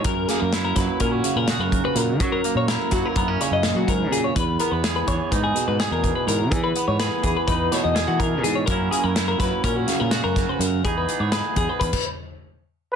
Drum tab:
CC |------------------|------------------|------------------|------------------|
HH |x-x-x-x-x-x-x-x-x-|x-x-x-x-x-x-x-x-x-|x-x-x-x-x-x-x-x-x-|x-x-x-x-x-x-x-x-x-|
SD |--o-o-o-----o-----|----o-o-----o-----|----o-------o-----|----o-----o-o-----|
BD |o-----o-o-----o---|o-----o-o-----o---|o-----o-o-----o---|o-----o-o-----o---|

CC |------------------|---------x--------|
HH |x-x-x-x-x-x-x-x-x-|x-x-x-x-x---------|
SD |----o-o---o-o-o---|----o-------------|
BD |o-----o-o-----o---|o-----o-oo--------|